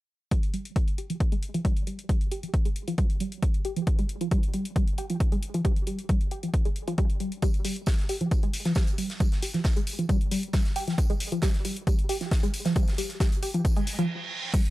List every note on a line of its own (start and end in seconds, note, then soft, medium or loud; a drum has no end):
0.31 0.39 G3 loud
0.31 kick loud
0.31 closed hi-hat medium
0.43 closed hi-hat medium
0.54 0.65 G3 medium
0.54 closed hi-hat medium
0.65 closed hi-hat medium
0.76 0.83 G3 medium
0.76 kick loud
0.76 closed hi-hat medium
0.88 closed hi-hat medium
0.98 1.06 G4 medium
0.98 closed hi-hat medium
1.10 1.17 F3 medium
1.10 closed hi-hat medium
1.20 kick loud
1.20 closed hi-hat medium
1.32 1.36 G#3 loud
1.32 closed hi-hat soft
1.43 closed hi-hat medium
1.54 1.61 F3 loud
1.54 closed hi-hat medium
1.65 1.72 G3 loud
1.65 kick loud
1.65 closed hi-hat medium
1.77 closed hi-hat medium
1.87 1.98 G3 medium
1.87 closed hi-hat medium
1.99 closed hi-hat medium
2.09 2.17 G3 medium
2.09 kick loud
2.09 closed hi-hat medium
2.21 closed hi-hat medium
2.31 2.39 G4 medium
2.31 closed hi-hat medium
2.43 2.50 F3 medium
2.43 closed hi-hat medium
2.54 kick loud
2.54 closed hi-hat medium
2.65 2.69 G#3 loud
2.65 closed hi-hat medium
2.76 closed hi-hat medium
2.88 2.94 F3 loud
2.88 closed hi-hat medium
2.98 3.06 G3 loud
2.98 kick loud
2.98 closed hi-hat medium
3.10 closed hi-hat medium
3.20 3.32 G3 medium
3.20 closed hi-hat medium
3.32 closed hi-hat medium
3.42 3.50 G3 medium
3.42 kick loud
3.42 closed hi-hat medium
3.54 closed hi-hat soft
3.65 3.72 G4 medium
3.65 closed hi-hat medium
3.76 3.83 F3 medium
3.76 closed hi-hat medium
3.87 kick loud
3.87 closed hi-hat medium
3.99 4.03 G#3 loud
3.99 closed hi-hat medium
4.09 closed hi-hat medium
4.21 4.28 F3 loud
4.21 closed hi-hat soft
4.31 4.39 G3 loud
4.31 kick loud
4.31 closed hi-hat medium
4.43 closed hi-hat medium
4.54 4.65 G3 medium
4.54 closed hi-hat medium
4.65 closed hi-hat medium
4.76 4.84 G3 medium
4.76 kick loud
4.76 closed hi-hat medium
4.88 closed hi-hat medium
4.98 5.06 G4 medium
4.98 closed hi-hat medium
5.10 5.17 F3 medium
5.10 closed hi-hat medium
5.20 kick loud
5.20 closed hi-hat medium
5.32 5.36 G#3 loud
5.32 closed hi-hat medium
5.43 closed hi-hat medium
5.54 5.61 F3 loud
5.54 closed hi-hat medium
5.65 5.72 G3 loud
5.65 kick loud
5.65 closed hi-hat medium
5.76 closed hi-hat medium
5.87 5.98 G3 medium
5.87 closed hi-hat medium
5.99 closed hi-hat soft
6.09 6.17 G3 medium
6.09 kick loud
6.09 closed hi-hat medium
6.21 closed hi-hat soft
6.31 6.39 G4 medium
6.31 closed hi-hat medium
6.43 6.50 F3 medium
6.43 closed hi-hat medium
6.54 kick loud
6.54 closed hi-hat medium
6.65 6.70 G#3 loud
6.65 closed hi-hat soft
6.76 closed hi-hat medium
6.88 6.94 F3 loud
6.88 closed hi-hat soft
6.98 7.06 G3 loud
6.98 kick loud
6.98 closed hi-hat medium
7.10 closed hi-hat soft
7.20 7.32 G3 medium
7.20 closed hi-hat medium
7.32 closed hi-hat medium
7.42 7.50 G3 loud
7.42 kick loud
7.42 closed hi-hat medium
7.42 tambourine medium
7.54 closed hi-hat soft
7.65 7.76 G3 medium
7.65 open hi-hat loud
7.65 tambourine medium
7.76 closed hi-hat soft
7.86 7.95 G3 medium
7.86 kick loud
7.86 snare loud
7.86 closed hi-hat medium
7.86 tambourine medium
7.99 snare soft
7.99 closed hi-hat soft
8.09 8.17 G4 medium
8.09 open hi-hat loud
8.09 tambourine medium
8.21 8.28 F3 medium
8.21 closed hi-hat soft
8.31 kick loud
8.31 closed hi-hat medium
8.31 tambourine medium
8.43 8.47 G#3 loud
8.43 closed hi-hat soft
8.54 open hi-hat loud
8.54 tambourine medium
8.65 8.72 F3 loud
8.65 snare soft
8.65 closed hi-hat soft
8.75 8.83 G3 loud
8.75 kick loud
8.75 snare loud
8.75 closed hi-hat medium
8.75 tambourine medium
8.87 closed hi-hat soft
8.98 9.09 G3 medium
8.98 open hi-hat loud
8.98 tambourine medium
9.10 snare medium
9.10 closed hi-hat medium
9.20 9.28 G3 medium
9.20 kick loud
9.20 closed hi-hat medium
9.20 tambourine medium
9.32 snare soft
9.32 closed hi-hat medium
9.42 9.50 G4 medium
9.42 open hi-hat loud
9.42 tambourine medium
9.54 9.61 F3 medium
9.54 snare soft
9.54 closed hi-hat soft
9.64 kick loud
9.64 snare loud
9.64 closed hi-hat medium
9.64 tambourine medium
9.76 9.81 G#3 loud
9.76 closed hi-hat soft
9.76 closed hi-hat medium
9.87 open hi-hat loud
9.87 tambourine medium
9.99 10.05 F3 loud
9.99 closed hi-hat soft
10.09 10.17 G3 loud
10.09 kick loud
10.09 closed hi-hat medium
10.09 tambourine medium
10.21 closed hi-hat soft
10.31 10.43 G3 medium
10.31 open hi-hat loud
10.31 tambourine medium
10.43 closed hi-hat soft
10.53 10.61 G3 medium
10.53 kick loud
10.53 snare loud
10.53 closed hi-hat medium
10.53 tambourine medium
10.65 snare soft
10.65 closed hi-hat soft
10.76 10.84 G4 medium
10.76 open hi-hat loud
10.76 tambourine medium
10.88 10.94 F3 medium
10.88 snare soft
10.88 closed hi-hat medium
10.98 kick loud
10.98 closed hi-hat medium
10.98 tambourine medium
11.10 11.14 G#3 loud
11.10 closed hi-hat soft
11.20 open hi-hat loud
11.20 tambourine medium
11.32 11.39 F3 loud
11.32 closed hi-hat medium
11.42 11.50 G3 loud
11.42 kick loud
11.42 snare loud
11.42 closed hi-hat medium
11.42 tambourine medium
11.54 snare soft
11.54 closed hi-hat medium
11.65 11.76 G3 medium
11.65 open hi-hat loud
11.65 tambourine medium
11.76 closed hi-hat medium
11.87 11.95 G3 medium
11.87 kick loud
11.87 closed hi-hat medium
11.87 tambourine medium
11.99 closed hi-hat soft
12.09 12.17 G4 medium
12.09 open hi-hat loud
12.09 tambourine medium
12.21 12.28 F3 medium
12.21 snare soft
12.21 closed hi-hat medium
12.31 kick loud
12.31 snare loud
12.31 closed hi-hat medium
12.31 tambourine medium
12.43 12.47 G#3 loud
12.43 closed hi-hat soft
12.54 open hi-hat medium
12.54 tambourine medium
12.65 12.72 F3 loud
12.65 snare medium
12.65 closed hi-hat medium
12.76 12.84 G3 loud
12.76 kick loud
12.76 closed hi-hat medium
12.76 tambourine medium
12.88 snare medium
12.88 closed hi-hat medium
12.98 13.09 G3 medium
12.98 open hi-hat loud
12.98 tambourine medium
13.09 snare soft
13.09 closed hi-hat medium
13.20 13.28 G3 medium
13.20 kick loud
13.20 snare loud
13.20 closed hi-hat medium
13.20 tambourine medium
13.32 closed hi-hat medium
13.32 closed hi-hat soft
13.43 13.50 G4 medium
13.43 open hi-hat loud
13.43 tambourine medium
13.54 13.61 F3 medium
13.54 closed hi-hat medium
13.65 kick loud
13.65 closed hi-hat medium
13.65 tambourine medium
13.65 reverse cymbal medium
13.76 13.81 G#3 loud
13.76 closed hi-hat soft
13.87 open hi-hat loud
13.87 tambourine medium
13.99 14.06 F3 loud
13.99 closed hi-hat medium
14.54 14.70 G2 medium
14.54 14.70 D3 medium
14.54 14.61 G3 loud
14.54 kick loud
14.54 closed hi-hat medium
14.54 tambourine medium
14.54 crash medium
14.65 closed hi-hat medium